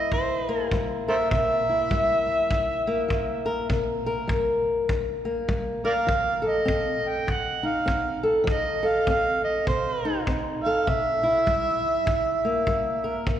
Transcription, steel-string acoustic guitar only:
0.00 0.48 A#3 medium
0.00 1.69 E4 medium
0.14 0.68 G2 medium
0.49 2.86 A#3 medium
0.73 1.27 G3 medium
1.08 1.35 A#4 medium
1.32 1.86 C3 medium
1.69 3.68 E4 soft
1.91 2.46 G3 medium
2.50 3.05 G2 medium
2.87 5.24 A#3 medium
3.08 3.64 G3 soft
3.46 3.67 A#4 medium
3.69 4.25 C3 medium
4.06 5.83 A#4 medium
4.27 4.83 G3 medium
4.90 5.45 G2 medium
5.25 6.08 A#3 medium
5.48 6.04 G3 medium
5.85 6.06 A#4 medium
6.07 6.63 F3 medium
6.42 8.22 A4 medium
6.65 7.22 C4 medium
7.27 7.83 C3 medium
7.63 8.44 D#4 soft
7.86 8.42 C4 medium
8.23 8.44 A4 medium
8.44 9.01 F3 medium
8.83 10.63 A4 medium
9.08 9.63 C4 medium
9.67 10.22 C3 medium
10.05 10.85 D#4 medium
10.27 10.82 C4 medium
10.66 10.86 A4 medium
10.88 11.43 C3 medium
11.23 13.24 E4 medium
11.46 12.02 G3 medium
12.06 12.62 G2 medium
12.45 13.40 A#3 soft
12.68 13.22 G3 medium
13.04 13.24 A#4 medium
13.27 13.40 C3 medium

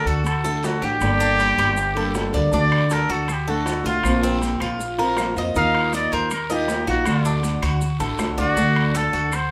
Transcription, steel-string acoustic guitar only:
0.00 0.23 D3 soft
0.00 0.23 A3 medium
0.00 0.23 D4 medium
0.00 0.23 F#4 medium
0.24 muted steel-string acoustic guitar stroke medium
0.44 0.63 A3 medium
0.44 0.63 D4 medium
0.44 0.62 F#4 medium
0.64 0.82 D3 soft
0.64 0.82 A3 soft
0.64 0.82 D4 soft
0.64 0.82 F#4 soft
0.83 1.02 A3 medium
0.83 1.01 D4 medium
0.83 1.01 F#4 medium
1.01 1.39 D3 medium
1.01 1.39 G3 medium
1.01 1.39 A#3 medium
1.01 1.39 D4 medium
1.01 1.40 A4 medium
1.40 1.76 G3 soft
1.40 1.76 A#3 soft
1.40 1.76 D4 soft
1.40 1.77 A4 soft
1.77 muted steel-string acoustic guitar stroke medium
1.95 2.13 G3 medium
1.95 2.14 A#3 medium
1.95 2.14 D4 medium
1.95 2.14 A4 medium
2.14 2.33 G3 soft
2.14 2.33 A#3 soft
2.14 2.32 D4 soft
2.14 2.32 A4 medium
2.33 2.52 G3 soft
2.33 2.52 A#3 medium
2.33 2.52 D4 medium
2.33 2.52 A4 medium
2.52 2.89 D3 medium
2.52 2.89 A3 medium
2.52 2.90 D4 medium
2.52 2.90 F#4 medium
2.90 3.27 D3 soft
2.90 3.28 A3 soft
2.90 3.28 D4 medium
2.90 3.28 F#4 medium
3.28 muted steel-string acoustic guitar stroke medium
3.47 3.65 A3 medium
3.47 3.66 D4 medium
3.47 3.66 F#4 medium
3.66 3.84 D3 soft
3.66 3.85 A3 soft
3.66 3.84 D4 medium
3.66 3.83 F#4 soft
3.84 4.04 A3 medium
3.84 4.04 D4 medium
3.84 4.03 F#4 medium
4.04 4.40 F3 medium
4.04 4.40 A#3 medium
4.04 4.42 C4 medium
4.04 4.42 F4 medium
4.41 4.78 F3 soft
4.41 4.79 A#3 soft
4.41 4.79 C4 soft
4.41 4.79 F4 medium
4.79 muted steel-string acoustic guitar stroke medium
4.98 5.17 A#3 medium
4.98 5.17 C4 medium
4.98 5.17 F4 medium
5.17 5.35 F3 soft
5.17 5.36 A#3 soft
5.17 5.36 C4 soft
5.17 5.35 F4 soft
5.36 5.54 A#3 soft
5.36 5.55 C4 medium
5.36 5.54 F4 medium
5.54 5.92 D#3 medium
5.54 5.92 A#3 medium
5.54 5.93 D#4 medium
5.54 5.93 F4 medium
5.54 5.93 A#4 medium
5.93 6.30 A#3 soft
5.93 6.30 D#4 medium
5.93 6.31 F4 medium
5.93 6.31 A#4 soft
6.31 muted steel-string acoustic guitar stroke medium
6.50 6.68 A#3 medium
6.50 6.69 D#4 medium
6.50 6.68 F4 medium
6.50 6.68 A#4 medium
6.69 6.87 A#3 soft
6.69 6.87 D#4 soft
6.69 6.87 F4 medium
6.69 6.86 A#4 medium
6.88 7.05 A#3 medium
6.88 7.06 D#4 medium
6.88 7.06 F4 medium
6.88 7.06 A#4 medium
7.06 7.41 D3 medium
7.06 7.42 A3 medium
7.06 7.42 D4 medium
7.06 7.43 F#4 medium
7.42 7.80 D3 medium
7.42 7.80 A3 medium
7.42 7.81 D4 medium
7.42 7.81 F#4 medium
7.81 muted steel-string acoustic guitar stroke medium
8.00 8.18 A3 medium
8.00 8.19 D4 medium
8.00 8.18 F#4 medium
8.19 8.37 D3 soft
8.19 8.38 A3 soft
8.19 8.37 D4 soft
8.19 8.36 F#4 medium
8.37 8.56 A3 medium
8.37 8.57 D4 medium
8.37 8.56 F#4 medium
8.57 8.93 D3 medium
8.57 8.94 A3 medium
8.57 8.95 D4 medium
8.57 8.95 F#4 medium
8.94 9.31 D3 soft
8.94 9.31 A3 soft
8.94 9.31 D4 medium
8.94 9.31 F#4 soft
9.32 muted steel-string acoustic guitar stroke medium

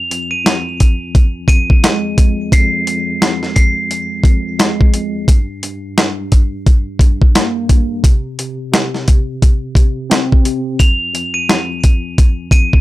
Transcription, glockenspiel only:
0.00 0.28 F7 loud
0.31 1.44 D#7 medium
1.48 2.48 D#7 medium
2.53 3.18 C7 medium
3.56 3.75 C7 medium
10.79 11.32 F7 loud
11.34 12.48 D#7 medium
12.52 12.81 D#7 medium

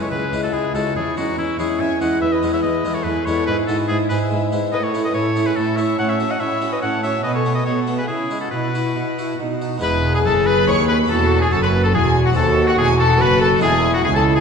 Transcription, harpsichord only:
0.00 0.21 G#3 soft
0.00 0.21 C#4 soft
0.00 0.21 E4 soft
0.12 0.30 C#2 soft
0.33 0.52 C#2 soft
0.33 0.63 G#3 soft
0.33 0.63 C#4 soft
0.33 0.63 E4 soft
0.54 0.72 C#2 soft
0.75 0.94 C#2 soft
0.75 0.90 G#3 soft
0.75 0.90 C#4 soft
0.75 0.91 E4 soft
0.96 1.15 E2 soft
1.17 1.36 E2 soft
1.17 1.47 G#3 soft
1.17 1.48 C#4 soft
1.17 1.48 E4 soft
1.39 1.57 E2 soft
1.59 1.78 E2 soft
1.59 1.89 G#3 soft
1.59 1.90 C#4 soft
1.59 1.90 E4 soft
1.80 1.99 E2 soft
2.01 2.20 E2 soft
2.01 2.16 G#3 soft
2.01 2.17 C#4 soft
2.01 2.17 E4 soft
2.22 2.41 E2 soft
2.43 2.62 E2 soft
2.43 2.73 G#3 soft
2.43 2.73 B3 soft
2.43 2.73 E4 soft
2.64 2.83 E2 soft
2.85 3.04 E2 soft
2.85 3.15 G#3 soft
2.85 3.16 B3 soft
2.85 3.16 E4 soft
3.06 3.25 E2 soft
3.27 3.46 E2 soft
3.27 3.42 G#3 soft
3.27 3.42 B3 soft
3.27 3.43 E4 soft
3.48 3.67 G#2 soft
3.69 3.88 G#2 soft
3.69 3.99 B3 soft
3.69 3.99 E4 soft
3.90 4.09 G#2 soft
4.10 4.29 G#2 soft
4.10 4.41 B3 soft
4.10 4.41 E4 soft
4.31 4.50 G#2 soft
4.52 4.71 G#2 soft
4.52 4.67 B3 soft
4.52 4.68 E4 soft
4.73 5.07 A2 soft
4.94 5.25 A3 soft
4.94 5.25 C#4 soft
4.94 5.25 E4 soft
5.15 5.49 A2 soft
5.36 5.66 A3 soft
5.36 5.67 C#4 soft
5.36 5.67 E4 soft
5.57 5.91 A2 soft
5.78 5.93 A3 soft
5.78 5.93 C#4 soft
5.78 5.93 E4 soft
5.99 6.33 A2 soft
6.20 6.50 A3 soft
6.20 6.50 C#4 soft
6.20 6.51 F#4 soft
6.40 6.75 A2 soft
6.61 6.92 A3 soft
6.61 6.92 C#4 soft
6.61 6.93 F#4 soft
6.83 7.17 A2 soft
7.04 7.19 A3 soft
7.04 7.19 C#4 soft
7.04 7.19 F#4 soft
7.25 7.59 B2 soft
7.45 7.76 A3 soft
7.45 7.76 B3 soft
7.45 7.76 F#4 soft
7.66 8.01 B2 soft
7.87 8.03 A3 soft
7.87 8.03 B3 soft
7.87 8.03 F#4 soft
8.09 8.44 C#3 soft
8.31 8.46 G#3 soft
8.31 8.46 E4 soft
8.52 8.88 B2 soft
8.75 9.06 E4 soft
8.75 9.06 F#4 soft
8.96 9.31 B2 soft
9.19 9.34 E4 soft
9.19 9.34 F#4 soft
9.40 9.74 B2 soft
9.62 9.77 D#4 soft
9.62 9.77 F#4 soft
9.78 10.21 G#3 medium
9.78 10.22 B3 medium
9.78 11.05 E4 medium
9.82 10.21 E2 medium
10.25 10.63 F#2 medium
10.67 11.05 D#2 medium
11.06 11.48 E2 medium
11.06 12.30 C#4 medium
11.06 12.31 F#4 medium
11.52 11.90 F#2 medium
11.93 12.32 E2 medium
12.33 12.74 D#2 medium
12.33 13.57 C4 medium
12.33 13.58 F#4 medium
12.78 13.16 E2 medium
13.20 13.58 F#2 medium
13.58 14.01 G#3 medium
13.58 14.02 B3 medium
13.58 14.40 E4 medium
13.63 14.01 E2 medium
14.05 14.40 C#2 medium

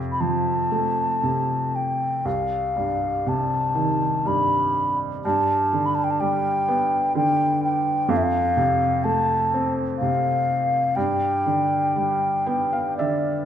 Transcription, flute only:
0.12 0.22 B5 medium
0.20 1.77 A5 medium
1.75 2.27 G5 medium
2.26 3.30 F5 medium
3.28 4.29 A5 medium
4.27 4.99 B5 medium
5.25 5.87 A5 medium
5.86 5.96 B5 medium
5.95 6.05 A5 medium
6.04 6.12 G5 medium
6.10 6.22 A5 medium
6.20 7.16 G5 medium
7.16 7.61 G5 medium
7.63 8.11 G5 medium
8.10 8.18 F5 medium
8.17 8.25 E5 medium
8.23 9.05 F5 loud
9.04 9.74 A5 medium
9.98 10.97 F5 medium
10.95 12.97 G5 medium
12.97 13.45 D5 medium

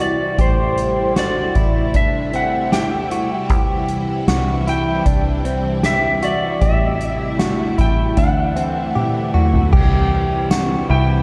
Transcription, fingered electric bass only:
0.00 0.35 C2 medium
0.38 1.51 A1 medium
1.56 3.50 A1 medium
3.50 4.24 C2 medium
4.28 5.02 C2 medium
5.06 6.58 C2 medium
6.61 7.75 A1 medium
7.79 8.16 A1 medium
8.17 8.92 D2 medium
9.73 10.86 C2 loud
10.90 11.23 C2 loud

